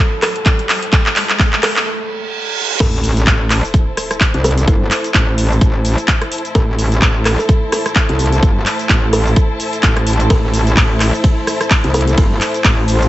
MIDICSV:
0, 0, Header, 1, 9, 480
1, 0, Start_track
1, 0, Key_signature, 0, "minor"
1, 0, Tempo, 468750
1, 949, Time_signature, 4, 2, 24, 8
1, 13400, End_track
2, 0, Start_track
2, 0, Title_t, "String section"
2, 0, Program_c, 0, 48
2, 0, Note_on_c, 0, 64, 83
2, 0, Note_on_c, 0, 69, 79
2, 0, Note_on_c, 0, 72, 77
2, 0, Note_on_c, 0, 81, 73
2, 1909, Note_off_c, 0, 64, 0
2, 1909, Note_off_c, 0, 69, 0
2, 1910, Note_off_c, 0, 81, 0
2, 1911, Note_off_c, 0, 72, 0
2, 2870, Note_on_c, 0, 64, 90
2, 3037, Note_on_c, 0, 72, 78
2, 3187, Note_on_c, 0, 81, 72
2, 3503, Note_on_c, 0, 69, 69
2, 13400, Note_off_c, 0, 64, 0
2, 13400, Note_off_c, 0, 69, 0
2, 13400, Note_off_c, 0, 72, 0
2, 13400, Note_off_c, 0, 81, 0
2, 13400, End_track
3, 0, Start_track
3, 0, Title_t, "Kalimba"
3, 0, Program_c, 1, 108
3, 230, Note_on_c, 1, 69, 93
3, 380, Note_off_c, 1, 69, 0
3, 1671, Note_on_c, 1, 69, 95
3, 2150, Note_off_c, 1, 69, 0
3, 2870, Note_on_c, 1, 69, 90
3, 3246, Note_off_c, 1, 69, 0
3, 4550, Note_on_c, 1, 69, 95
3, 4769, Note_off_c, 1, 69, 0
3, 4789, Note_on_c, 1, 64, 87
3, 5269, Note_off_c, 1, 64, 0
3, 6709, Note_on_c, 1, 69, 87
3, 7086, Note_off_c, 1, 69, 0
3, 7429, Note_on_c, 1, 69, 88
3, 7517, Note_off_c, 1, 69, 0
3, 7566, Note_on_c, 1, 69, 76
3, 7632, Note_off_c, 1, 69, 0
3, 7909, Note_on_c, 1, 69, 91
3, 8060, Note_off_c, 1, 69, 0
3, 9350, Note_on_c, 1, 69, 90
3, 9829, Note_off_c, 1, 69, 0
3, 10550, Note_on_c, 1, 69, 87
3, 10926, Note_off_c, 1, 69, 0
3, 12229, Note_on_c, 1, 69, 92
3, 12448, Note_off_c, 1, 69, 0
3, 12468, Note_on_c, 1, 64, 92
3, 12949, Note_off_c, 1, 64, 0
3, 13400, End_track
4, 0, Start_track
4, 0, Title_t, "Analog synth pad"
4, 0, Program_c, 2, 89
4, 0, Note_on_c, 2, 57, 85
4, 0, Note_on_c, 2, 64, 81
4, 0, Note_on_c, 2, 72, 95
4, 1867, Note_off_c, 2, 57, 0
4, 1868, Note_off_c, 2, 64, 0
4, 1868, Note_off_c, 2, 72, 0
4, 2869, Note_on_c, 2, 57, 91
4, 2869, Note_on_c, 2, 64, 83
4, 2870, Note_on_c, 2, 72, 96
4, 6698, Note_off_c, 2, 72, 0
4, 6707, Note_on_c, 2, 69, 101
4, 10537, Note_off_c, 2, 69, 0
4, 10549, Note_on_c, 2, 72, 102
4, 13400, Note_off_c, 2, 57, 0
4, 13400, Note_off_c, 2, 64, 0
4, 13400, Note_off_c, 2, 72, 0
4, 13400, End_track
5, 0, Start_track
5, 0, Title_t, "Wobble bass"
5, 0, Program_c, 3, 39
5, 2869, Note_on_c, 3, 33, 91
5, 3332, Note_off_c, 3, 33, 0
5, 3349, Note_on_c, 3, 33, 97
5, 3704, Note_off_c, 3, 33, 0
5, 4446, Note_on_c, 3, 36, 97
5, 4773, Note_off_c, 3, 36, 0
5, 4788, Note_on_c, 3, 31, 94
5, 5012, Note_off_c, 3, 31, 0
5, 5268, Note_on_c, 3, 33, 98
5, 5732, Note_off_c, 3, 33, 0
5, 5748, Note_on_c, 3, 33, 95
5, 6103, Note_off_c, 3, 33, 0
5, 6708, Note_on_c, 3, 33, 93
5, 7172, Note_off_c, 3, 33, 0
5, 7189, Note_on_c, 3, 33, 99
5, 7544, Note_off_c, 3, 33, 0
5, 8286, Note_on_c, 3, 36, 98
5, 8613, Note_off_c, 3, 36, 0
5, 8630, Note_on_c, 3, 31, 93
5, 8853, Note_off_c, 3, 31, 0
5, 9109, Note_on_c, 3, 33, 100
5, 9572, Note_off_c, 3, 33, 0
5, 10069, Note_on_c, 3, 33, 98
5, 10533, Note_off_c, 3, 33, 0
5, 10550, Note_on_c, 3, 33, 100
5, 11013, Note_off_c, 3, 33, 0
5, 11029, Note_on_c, 3, 33, 95
5, 11384, Note_off_c, 3, 33, 0
5, 12126, Note_on_c, 3, 36, 97
5, 12453, Note_off_c, 3, 36, 0
5, 12469, Note_on_c, 3, 31, 95
5, 12693, Note_off_c, 3, 31, 0
5, 12950, Note_on_c, 3, 33, 99
5, 13400, Note_off_c, 3, 33, 0
5, 13400, End_track
6, 0, Start_track
6, 0, Title_t, "Reverse cymbal"
6, 0, Program_c, 4, 119
6, 1908, Note_on_c, 4, 60, 78
6, 2869, Note_off_c, 4, 60, 0
6, 13400, End_track
7, 0, Start_track
7, 0, Title_t, "Riser"
7, 0, Program_c, 5, 103
7, 0, Note_on_c, 5, 60, 78
7, 1909, Note_off_c, 5, 60, 0
7, 13400, End_track
8, 0, Start_track
8, 0, Title_t, "Sub drop"
8, 0, Program_c, 6, 103
8, 2869, Note_on_c, 6, 60, 77
8, 4789, Note_off_c, 6, 60, 0
8, 13400, End_track
9, 0, Start_track
9, 0, Title_t, "Drums"
9, 228, Note_on_c, 9, 39, 84
9, 228, Note_on_c, 9, 46, 107
9, 331, Note_off_c, 9, 39, 0
9, 331, Note_off_c, 9, 46, 0
9, 366, Note_on_c, 9, 42, 52
9, 468, Note_off_c, 9, 42, 0
9, 468, Note_on_c, 9, 36, 112
9, 469, Note_on_c, 9, 39, 87
9, 469, Note_on_c, 9, 42, 63
9, 571, Note_off_c, 9, 36, 0
9, 571, Note_off_c, 9, 39, 0
9, 571, Note_off_c, 9, 42, 0
9, 606, Note_on_c, 9, 42, 53
9, 709, Note_off_c, 9, 42, 0
9, 709, Note_on_c, 9, 39, 89
9, 709, Note_on_c, 9, 46, 113
9, 811, Note_off_c, 9, 39, 0
9, 811, Note_off_c, 9, 46, 0
9, 846, Note_on_c, 9, 42, 54
9, 948, Note_off_c, 9, 42, 0
9, 948, Note_on_c, 9, 36, 127
9, 949, Note_on_c, 9, 39, 95
9, 949, Note_on_c, 9, 42, 62
9, 1051, Note_off_c, 9, 36, 0
9, 1052, Note_off_c, 9, 39, 0
9, 1052, Note_off_c, 9, 42, 0
9, 1086, Note_on_c, 9, 39, 86
9, 1189, Note_off_c, 9, 39, 0
9, 1189, Note_on_c, 9, 39, 98
9, 1189, Note_on_c, 9, 46, 105
9, 1291, Note_off_c, 9, 39, 0
9, 1291, Note_off_c, 9, 46, 0
9, 1326, Note_on_c, 9, 39, 79
9, 1326, Note_on_c, 9, 42, 51
9, 1428, Note_off_c, 9, 39, 0
9, 1428, Note_off_c, 9, 42, 0
9, 1428, Note_on_c, 9, 36, 112
9, 1429, Note_on_c, 9, 39, 99
9, 1429, Note_on_c, 9, 42, 36
9, 1531, Note_off_c, 9, 36, 0
9, 1531, Note_off_c, 9, 39, 0
9, 1531, Note_off_c, 9, 42, 0
9, 1565, Note_on_c, 9, 39, 83
9, 1668, Note_off_c, 9, 39, 0
9, 1669, Note_on_c, 9, 39, 105
9, 1669, Note_on_c, 9, 46, 114
9, 1771, Note_off_c, 9, 39, 0
9, 1771, Note_off_c, 9, 46, 0
9, 1806, Note_on_c, 9, 39, 91
9, 1909, Note_off_c, 9, 39, 0
9, 2869, Note_on_c, 9, 36, 127
9, 2870, Note_on_c, 9, 42, 71
9, 2870, Note_on_c, 9, 49, 106
9, 2877, Note_on_c, 9, 82, 34
9, 2971, Note_off_c, 9, 36, 0
9, 2972, Note_off_c, 9, 42, 0
9, 2972, Note_off_c, 9, 49, 0
9, 2979, Note_off_c, 9, 82, 0
9, 3109, Note_on_c, 9, 46, 103
9, 3116, Note_on_c, 9, 82, 78
9, 3212, Note_off_c, 9, 46, 0
9, 3219, Note_off_c, 9, 82, 0
9, 3246, Note_on_c, 9, 42, 53
9, 3253, Note_on_c, 9, 82, 44
9, 3347, Note_on_c, 9, 39, 127
9, 3349, Note_off_c, 9, 42, 0
9, 3349, Note_on_c, 9, 36, 107
9, 3350, Note_on_c, 9, 42, 39
9, 3356, Note_off_c, 9, 82, 0
9, 3357, Note_on_c, 9, 82, 34
9, 3450, Note_off_c, 9, 39, 0
9, 3451, Note_off_c, 9, 36, 0
9, 3452, Note_off_c, 9, 42, 0
9, 3459, Note_off_c, 9, 82, 0
9, 3588, Note_on_c, 9, 39, 69
9, 3590, Note_on_c, 9, 37, 61
9, 3590, Note_on_c, 9, 46, 108
9, 3597, Note_on_c, 9, 82, 78
9, 3690, Note_off_c, 9, 39, 0
9, 3692, Note_off_c, 9, 37, 0
9, 3692, Note_off_c, 9, 46, 0
9, 3700, Note_off_c, 9, 82, 0
9, 3733, Note_on_c, 9, 82, 44
9, 3829, Note_on_c, 9, 36, 118
9, 3830, Note_on_c, 9, 42, 67
9, 3836, Note_off_c, 9, 82, 0
9, 3837, Note_on_c, 9, 82, 34
9, 3931, Note_off_c, 9, 36, 0
9, 3932, Note_off_c, 9, 42, 0
9, 3939, Note_off_c, 9, 82, 0
9, 4069, Note_on_c, 9, 37, 75
9, 4069, Note_on_c, 9, 46, 108
9, 4076, Note_on_c, 9, 82, 78
9, 4171, Note_off_c, 9, 37, 0
9, 4171, Note_off_c, 9, 46, 0
9, 4178, Note_off_c, 9, 82, 0
9, 4206, Note_on_c, 9, 37, 82
9, 4206, Note_on_c, 9, 42, 55
9, 4213, Note_on_c, 9, 82, 46
9, 4307, Note_on_c, 9, 39, 125
9, 4308, Note_off_c, 9, 37, 0
9, 4308, Note_off_c, 9, 42, 0
9, 4308, Note_on_c, 9, 36, 104
9, 4309, Note_on_c, 9, 42, 68
9, 4316, Note_off_c, 9, 82, 0
9, 4317, Note_on_c, 9, 82, 35
9, 4410, Note_off_c, 9, 39, 0
9, 4411, Note_off_c, 9, 36, 0
9, 4412, Note_off_c, 9, 42, 0
9, 4419, Note_off_c, 9, 82, 0
9, 4446, Note_on_c, 9, 42, 55
9, 4548, Note_off_c, 9, 42, 0
9, 4549, Note_on_c, 9, 46, 106
9, 4556, Note_on_c, 9, 82, 82
9, 4618, Note_on_c, 9, 42, 69
9, 4651, Note_off_c, 9, 46, 0
9, 4659, Note_off_c, 9, 82, 0
9, 4686, Note_off_c, 9, 42, 0
9, 4686, Note_on_c, 9, 42, 58
9, 4693, Note_on_c, 9, 82, 47
9, 4788, Note_off_c, 9, 42, 0
9, 4788, Note_on_c, 9, 36, 127
9, 4789, Note_on_c, 9, 42, 66
9, 4795, Note_off_c, 9, 82, 0
9, 4796, Note_on_c, 9, 82, 32
9, 4891, Note_off_c, 9, 36, 0
9, 4892, Note_off_c, 9, 42, 0
9, 4899, Note_off_c, 9, 82, 0
9, 5026, Note_on_c, 9, 39, 66
9, 5028, Note_on_c, 9, 46, 114
9, 5036, Note_on_c, 9, 82, 75
9, 5129, Note_off_c, 9, 39, 0
9, 5131, Note_off_c, 9, 46, 0
9, 5138, Note_off_c, 9, 82, 0
9, 5165, Note_on_c, 9, 42, 54
9, 5172, Note_on_c, 9, 82, 42
9, 5267, Note_off_c, 9, 42, 0
9, 5267, Note_on_c, 9, 39, 127
9, 5268, Note_on_c, 9, 36, 109
9, 5269, Note_on_c, 9, 42, 38
9, 5275, Note_off_c, 9, 82, 0
9, 5276, Note_on_c, 9, 82, 34
9, 5369, Note_off_c, 9, 39, 0
9, 5371, Note_off_c, 9, 36, 0
9, 5371, Note_off_c, 9, 42, 0
9, 5379, Note_off_c, 9, 82, 0
9, 5509, Note_on_c, 9, 46, 111
9, 5516, Note_on_c, 9, 82, 75
9, 5611, Note_off_c, 9, 46, 0
9, 5618, Note_off_c, 9, 82, 0
9, 5653, Note_on_c, 9, 82, 43
9, 5748, Note_on_c, 9, 36, 125
9, 5749, Note_on_c, 9, 42, 66
9, 5755, Note_off_c, 9, 82, 0
9, 5756, Note_on_c, 9, 82, 32
9, 5850, Note_off_c, 9, 36, 0
9, 5851, Note_off_c, 9, 42, 0
9, 5859, Note_off_c, 9, 82, 0
9, 5988, Note_on_c, 9, 46, 109
9, 5996, Note_on_c, 9, 82, 76
9, 6091, Note_off_c, 9, 46, 0
9, 6098, Note_off_c, 9, 82, 0
9, 6125, Note_on_c, 9, 42, 55
9, 6133, Note_on_c, 9, 82, 43
9, 6226, Note_on_c, 9, 39, 127
9, 6228, Note_off_c, 9, 42, 0
9, 6228, Note_on_c, 9, 36, 113
9, 6228, Note_on_c, 9, 42, 69
9, 6235, Note_off_c, 9, 82, 0
9, 6236, Note_on_c, 9, 82, 32
9, 6329, Note_off_c, 9, 39, 0
9, 6330, Note_off_c, 9, 36, 0
9, 6331, Note_off_c, 9, 42, 0
9, 6338, Note_off_c, 9, 82, 0
9, 6365, Note_on_c, 9, 37, 83
9, 6365, Note_on_c, 9, 42, 54
9, 6467, Note_off_c, 9, 37, 0
9, 6467, Note_off_c, 9, 42, 0
9, 6468, Note_on_c, 9, 46, 114
9, 6475, Note_on_c, 9, 82, 76
9, 6536, Note_on_c, 9, 42, 64
9, 6570, Note_off_c, 9, 46, 0
9, 6578, Note_off_c, 9, 82, 0
9, 6605, Note_off_c, 9, 42, 0
9, 6605, Note_on_c, 9, 42, 58
9, 6612, Note_on_c, 9, 82, 45
9, 6707, Note_off_c, 9, 42, 0
9, 6707, Note_on_c, 9, 42, 68
9, 6708, Note_on_c, 9, 36, 127
9, 6714, Note_off_c, 9, 82, 0
9, 6714, Note_on_c, 9, 82, 31
9, 6810, Note_off_c, 9, 36, 0
9, 6810, Note_off_c, 9, 42, 0
9, 6817, Note_off_c, 9, 82, 0
9, 6948, Note_on_c, 9, 46, 110
9, 6956, Note_on_c, 9, 82, 75
9, 7051, Note_off_c, 9, 46, 0
9, 7058, Note_off_c, 9, 82, 0
9, 7086, Note_on_c, 9, 42, 50
9, 7093, Note_on_c, 9, 82, 42
9, 7186, Note_on_c, 9, 39, 126
9, 7188, Note_off_c, 9, 42, 0
9, 7188, Note_on_c, 9, 36, 112
9, 7189, Note_on_c, 9, 42, 37
9, 7195, Note_off_c, 9, 82, 0
9, 7196, Note_on_c, 9, 82, 31
9, 7289, Note_off_c, 9, 39, 0
9, 7290, Note_off_c, 9, 36, 0
9, 7291, Note_off_c, 9, 42, 0
9, 7298, Note_off_c, 9, 82, 0
9, 7427, Note_on_c, 9, 39, 68
9, 7429, Note_on_c, 9, 37, 66
9, 7429, Note_on_c, 9, 46, 110
9, 7437, Note_on_c, 9, 82, 75
9, 7530, Note_off_c, 9, 39, 0
9, 7532, Note_off_c, 9, 37, 0
9, 7532, Note_off_c, 9, 46, 0
9, 7539, Note_off_c, 9, 82, 0
9, 7573, Note_on_c, 9, 82, 43
9, 7669, Note_on_c, 9, 36, 127
9, 7670, Note_on_c, 9, 42, 64
9, 7675, Note_off_c, 9, 82, 0
9, 7678, Note_on_c, 9, 82, 33
9, 7771, Note_off_c, 9, 36, 0
9, 7773, Note_off_c, 9, 42, 0
9, 7780, Note_off_c, 9, 82, 0
9, 7909, Note_on_c, 9, 37, 79
9, 7909, Note_on_c, 9, 46, 112
9, 7916, Note_on_c, 9, 82, 75
9, 8011, Note_off_c, 9, 37, 0
9, 8011, Note_off_c, 9, 46, 0
9, 8019, Note_off_c, 9, 82, 0
9, 8046, Note_on_c, 9, 37, 87
9, 8046, Note_on_c, 9, 42, 53
9, 8054, Note_on_c, 9, 82, 41
9, 8147, Note_on_c, 9, 39, 120
9, 8149, Note_off_c, 9, 37, 0
9, 8149, Note_off_c, 9, 42, 0
9, 8149, Note_on_c, 9, 36, 116
9, 8149, Note_on_c, 9, 42, 67
9, 8156, Note_off_c, 9, 82, 0
9, 8157, Note_on_c, 9, 82, 32
9, 8250, Note_off_c, 9, 39, 0
9, 8251, Note_off_c, 9, 36, 0
9, 8252, Note_off_c, 9, 42, 0
9, 8259, Note_off_c, 9, 82, 0
9, 8286, Note_on_c, 9, 42, 53
9, 8388, Note_off_c, 9, 42, 0
9, 8389, Note_on_c, 9, 46, 110
9, 8396, Note_on_c, 9, 82, 77
9, 8456, Note_on_c, 9, 42, 65
9, 8491, Note_off_c, 9, 46, 0
9, 8498, Note_off_c, 9, 82, 0
9, 8525, Note_off_c, 9, 42, 0
9, 8525, Note_on_c, 9, 42, 54
9, 8532, Note_on_c, 9, 82, 44
9, 8627, Note_off_c, 9, 42, 0
9, 8628, Note_on_c, 9, 42, 64
9, 8629, Note_on_c, 9, 36, 127
9, 8634, Note_off_c, 9, 82, 0
9, 8636, Note_on_c, 9, 82, 33
9, 8731, Note_off_c, 9, 36, 0
9, 8731, Note_off_c, 9, 42, 0
9, 8738, Note_off_c, 9, 82, 0
9, 8867, Note_on_c, 9, 39, 62
9, 8869, Note_on_c, 9, 46, 106
9, 8876, Note_on_c, 9, 82, 77
9, 8969, Note_off_c, 9, 39, 0
9, 8971, Note_off_c, 9, 46, 0
9, 8978, Note_off_c, 9, 82, 0
9, 9005, Note_on_c, 9, 42, 50
9, 9013, Note_on_c, 9, 82, 43
9, 9107, Note_on_c, 9, 39, 120
9, 9108, Note_off_c, 9, 42, 0
9, 9109, Note_on_c, 9, 36, 110
9, 9109, Note_on_c, 9, 42, 35
9, 9115, Note_off_c, 9, 82, 0
9, 9116, Note_on_c, 9, 82, 33
9, 9209, Note_off_c, 9, 39, 0
9, 9211, Note_off_c, 9, 36, 0
9, 9211, Note_off_c, 9, 42, 0
9, 9219, Note_off_c, 9, 82, 0
9, 9348, Note_on_c, 9, 46, 108
9, 9355, Note_on_c, 9, 82, 78
9, 9450, Note_off_c, 9, 46, 0
9, 9458, Note_off_c, 9, 82, 0
9, 9492, Note_on_c, 9, 82, 43
9, 9588, Note_on_c, 9, 42, 63
9, 9589, Note_on_c, 9, 36, 125
9, 9594, Note_off_c, 9, 82, 0
9, 9595, Note_on_c, 9, 82, 34
9, 9690, Note_off_c, 9, 42, 0
9, 9691, Note_off_c, 9, 36, 0
9, 9697, Note_off_c, 9, 82, 0
9, 9828, Note_on_c, 9, 46, 110
9, 9835, Note_on_c, 9, 82, 79
9, 9930, Note_off_c, 9, 46, 0
9, 9938, Note_off_c, 9, 82, 0
9, 9965, Note_on_c, 9, 42, 50
9, 9972, Note_on_c, 9, 82, 43
9, 10066, Note_on_c, 9, 39, 115
9, 10067, Note_off_c, 9, 42, 0
9, 10068, Note_on_c, 9, 42, 67
9, 10069, Note_on_c, 9, 36, 114
9, 10074, Note_off_c, 9, 82, 0
9, 10076, Note_on_c, 9, 82, 34
9, 10169, Note_off_c, 9, 39, 0
9, 10171, Note_off_c, 9, 36, 0
9, 10171, Note_off_c, 9, 42, 0
9, 10178, Note_off_c, 9, 82, 0
9, 10205, Note_on_c, 9, 37, 84
9, 10205, Note_on_c, 9, 42, 51
9, 10307, Note_off_c, 9, 37, 0
9, 10307, Note_off_c, 9, 42, 0
9, 10308, Note_on_c, 9, 46, 115
9, 10315, Note_on_c, 9, 82, 79
9, 10376, Note_on_c, 9, 42, 62
9, 10410, Note_off_c, 9, 46, 0
9, 10418, Note_off_c, 9, 82, 0
9, 10445, Note_off_c, 9, 42, 0
9, 10445, Note_on_c, 9, 42, 52
9, 10452, Note_on_c, 9, 82, 43
9, 10547, Note_off_c, 9, 42, 0
9, 10548, Note_on_c, 9, 42, 64
9, 10548, Note_on_c, 9, 51, 71
9, 10549, Note_on_c, 9, 36, 127
9, 10555, Note_off_c, 9, 82, 0
9, 10556, Note_on_c, 9, 82, 34
9, 10651, Note_off_c, 9, 36, 0
9, 10651, Note_off_c, 9, 42, 0
9, 10651, Note_off_c, 9, 51, 0
9, 10658, Note_off_c, 9, 82, 0
9, 10788, Note_on_c, 9, 46, 104
9, 10796, Note_on_c, 9, 82, 79
9, 10891, Note_off_c, 9, 46, 0
9, 10898, Note_off_c, 9, 82, 0
9, 10925, Note_on_c, 9, 42, 48
9, 10932, Note_on_c, 9, 82, 44
9, 11026, Note_on_c, 9, 39, 118
9, 11027, Note_off_c, 9, 42, 0
9, 11028, Note_on_c, 9, 42, 37
9, 11028, Note_on_c, 9, 51, 73
9, 11029, Note_on_c, 9, 36, 110
9, 11035, Note_off_c, 9, 82, 0
9, 11035, Note_on_c, 9, 82, 35
9, 11129, Note_off_c, 9, 39, 0
9, 11131, Note_off_c, 9, 36, 0
9, 11131, Note_off_c, 9, 42, 0
9, 11131, Note_off_c, 9, 51, 0
9, 11138, Note_off_c, 9, 82, 0
9, 11267, Note_on_c, 9, 39, 60
9, 11269, Note_on_c, 9, 37, 65
9, 11269, Note_on_c, 9, 46, 107
9, 11276, Note_on_c, 9, 82, 83
9, 11369, Note_off_c, 9, 39, 0
9, 11371, Note_off_c, 9, 37, 0
9, 11371, Note_off_c, 9, 46, 0
9, 11379, Note_off_c, 9, 82, 0
9, 11413, Note_on_c, 9, 82, 46
9, 11509, Note_on_c, 9, 36, 119
9, 11509, Note_on_c, 9, 42, 64
9, 11509, Note_on_c, 9, 51, 70
9, 11515, Note_off_c, 9, 82, 0
9, 11516, Note_on_c, 9, 82, 36
9, 11611, Note_off_c, 9, 36, 0
9, 11611, Note_off_c, 9, 42, 0
9, 11611, Note_off_c, 9, 51, 0
9, 11618, Note_off_c, 9, 82, 0
9, 11748, Note_on_c, 9, 37, 78
9, 11748, Note_on_c, 9, 46, 103
9, 11756, Note_on_c, 9, 82, 77
9, 11851, Note_off_c, 9, 37, 0
9, 11851, Note_off_c, 9, 46, 0
9, 11858, Note_off_c, 9, 82, 0
9, 11885, Note_on_c, 9, 37, 88
9, 11885, Note_on_c, 9, 42, 52
9, 11892, Note_on_c, 9, 82, 46
9, 11986, Note_on_c, 9, 39, 114
9, 11988, Note_off_c, 9, 37, 0
9, 11988, Note_off_c, 9, 42, 0
9, 11988, Note_on_c, 9, 42, 64
9, 11988, Note_on_c, 9, 51, 72
9, 11989, Note_on_c, 9, 36, 107
9, 11995, Note_off_c, 9, 82, 0
9, 11996, Note_on_c, 9, 82, 34
9, 12089, Note_off_c, 9, 39, 0
9, 12091, Note_off_c, 9, 36, 0
9, 12091, Note_off_c, 9, 42, 0
9, 12091, Note_off_c, 9, 51, 0
9, 12098, Note_off_c, 9, 82, 0
9, 12125, Note_on_c, 9, 42, 52
9, 12227, Note_off_c, 9, 42, 0
9, 12228, Note_on_c, 9, 46, 109
9, 12235, Note_on_c, 9, 82, 81
9, 12296, Note_on_c, 9, 42, 63
9, 12330, Note_off_c, 9, 46, 0
9, 12338, Note_off_c, 9, 82, 0
9, 12365, Note_off_c, 9, 42, 0
9, 12365, Note_on_c, 9, 42, 52
9, 12372, Note_on_c, 9, 82, 48
9, 12467, Note_off_c, 9, 42, 0
9, 12468, Note_on_c, 9, 42, 67
9, 12468, Note_on_c, 9, 51, 75
9, 12469, Note_on_c, 9, 36, 121
9, 12475, Note_off_c, 9, 82, 0
9, 12475, Note_on_c, 9, 82, 35
9, 12570, Note_off_c, 9, 42, 0
9, 12570, Note_off_c, 9, 51, 0
9, 12571, Note_off_c, 9, 36, 0
9, 12578, Note_off_c, 9, 82, 0
9, 12706, Note_on_c, 9, 39, 58
9, 12708, Note_on_c, 9, 46, 102
9, 12716, Note_on_c, 9, 82, 84
9, 12809, Note_off_c, 9, 39, 0
9, 12811, Note_off_c, 9, 46, 0
9, 12818, Note_off_c, 9, 82, 0
9, 12845, Note_on_c, 9, 42, 51
9, 12852, Note_on_c, 9, 82, 48
9, 12946, Note_on_c, 9, 39, 119
9, 12948, Note_off_c, 9, 42, 0
9, 12949, Note_on_c, 9, 36, 106
9, 12949, Note_on_c, 9, 42, 38
9, 12949, Note_on_c, 9, 51, 72
9, 12955, Note_off_c, 9, 82, 0
9, 12956, Note_on_c, 9, 82, 37
9, 13049, Note_off_c, 9, 39, 0
9, 13051, Note_off_c, 9, 36, 0
9, 13051, Note_off_c, 9, 42, 0
9, 13051, Note_off_c, 9, 51, 0
9, 13058, Note_off_c, 9, 82, 0
9, 13190, Note_on_c, 9, 46, 108
9, 13197, Note_on_c, 9, 82, 84
9, 13292, Note_off_c, 9, 46, 0
9, 13299, Note_off_c, 9, 82, 0
9, 13334, Note_on_c, 9, 82, 46
9, 13400, Note_off_c, 9, 82, 0
9, 13400, End_track
0, 0, End_of_file